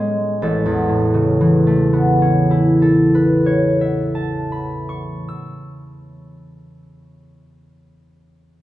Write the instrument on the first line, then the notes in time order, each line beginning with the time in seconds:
harp
Already playing: A2 G#3 C#4 B4 C#5
0.42 A1 A4
0.66 E2
0.89 A2
1.14 C#3
1.41 E3
1.67 A3
1.93 B3
2.22 C#4
2.51 E4
2.82 A4
3.15 B4
3.46 C#5
3.81 E5
4.15 A5
4.52 B5
4.89 C#6
5.28 E6